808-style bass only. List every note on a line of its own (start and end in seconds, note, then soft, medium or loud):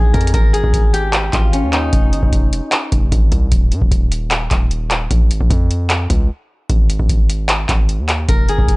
0.00 0.13 A#1 loud
0.14 0.33 F2 loud
0.34 0.62 G#1 loud
0.64 1.30 G#1 loud
1.33 1.65 G#1 loud
1.63 1.91 D#2 loud
1.93 2.14 F1 loud
2.13 2.22 G1 medium
2.23 2.61 F1 loud
2.92 3.11 F1 loud
3.12 3.31 G#1 loud
3.32 3.51 C2 loud
3.52 3.73 D#1 loud
3.72 3.81 G2 loud
3.82 3.91 D#1 loud
3.91 4.49 D#1 loud
4.51 5.08 D#1 loud
5.11 5.32 A#1 loud
5.30 5.40 G#1 loud
5.41 5.50 A#1 loud
5.50 6.08 F2 loud
6.10 6.30 C#2 loud
6.70 6.98 G#1 loud
6.99 7.66 G#1 loud
7.69 8.00 G#1 loud
7.99 8.27 D#2 medium
8.29 8.50 F1 loud
8.48 8.58 G1 loud
8.58 8.77 F1 loud